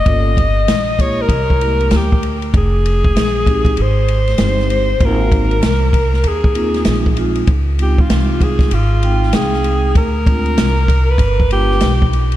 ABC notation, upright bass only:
X:1
M:4/4
L:1/8
Q:"Swing 16ths" 1/4=97
K:Fmix
V:1 name="Upright bass" clef=bass
G,,,2 B,,,2 C,,2 D,,2 | F,,,2 B,,,2 _A,,,2 G,,,2 | _A,,,2 C,,2 E,,2 B,,,2 | _D,,2 C,,2 _A,,,2 C,,2 |
D,,2 C,,2 G,,,2 =B,,,2 |]